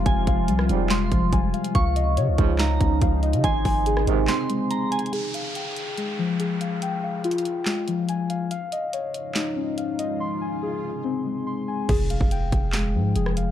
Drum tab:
CC |------------------------------------------------|------------------------------------------------|------------------------------------------------|------------------------------------------------|
HH |x-----x-----x-----x-----x-----x-----x-----x--x--|x-----x-----x-----x-----x-----x-----x-----x--x--|x-----o-----x-----x-----x-----x-----x-----x-x-x-|x-----x-----x-----x-----x-----------x-----x-----|
CP |------------------------x-----------------------|------------------------x-----------------------|------------------------x-----------------------|------------------------------------------------|
SD |---------------r--------o-----------------------|------------------------o-----------------------|---------------r--------o-----------------------|------------------------------------------------|
BD |o-----o-----------------------o-----o-----------|o-----------------o-----------o-----o-----------|o-----o-----------------------------------------|------------------------------------------------|

CC |------------------------------------------------|------------------------------------------------|------------------------------------------------|x-----------------------------------------------|
HH |x-----------x-x-x-x-----x-----x-----x-----x-----|x-----x-----x-----x-----x-----------x-----x-----|------------------------------------------------|x-----x-----x-----x-----x-----------x-----x-----|
CP |------------------------x-----------------------|------------------------x-----------------------|------------------------------------------------|------------------------x-----------------------|
SD |------------------------o-----------------------|------------------------o-----------------------|------------------------------------------------|------------------------o--------------r--------|
BD |------------------------------------------------|------------------------------------------------|------------------------------------------------|o--------o--------o-----------------------------|